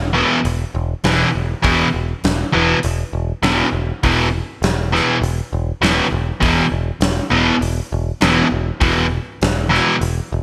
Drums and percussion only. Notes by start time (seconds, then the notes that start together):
0.45 open hi-hat
1.04 snare, open hi-hat
1.64 kick, open hi-hat
2.24 snare, open hi-hat
2.83 open hi-hat
3.43 snare, open hi-hat
4.03 kick, open hi-hat
4.63 snare, open hi-hat
4.95 snare
5.23 open hi-hat
5.83 snare, open hi-hat
6.42 kick, open hi-hat
7.01 snare, open hi-hat
7.62 open hi-hat
8.21 snare, open hi-hat
8.81 kick, open hi-hat
9.42 snare, open hi-hat
9.74 snare
10.02 open hi-hat